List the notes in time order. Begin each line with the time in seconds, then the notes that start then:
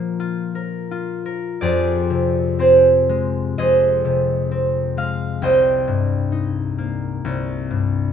Already playing: A#2 F3 A#3 F4 A#4 C#5 F5 G5 A#5
0.20 F4
0.55 A#4
0.91 F4
1.26 A#4
1.61 F2 G4 G#4 D5
2.10 C3
2.59 C4 G4 G#4 C5
3.09 G#3
3.58 F2 G#4 C5 D#5
4.05 C3
4.51 C4
4.97 G#3 F5
5.42 C2 C5 D#5 G5
5.88 G2
6.32 D#4
6.78 A#3
7.25 C2
7.71 G2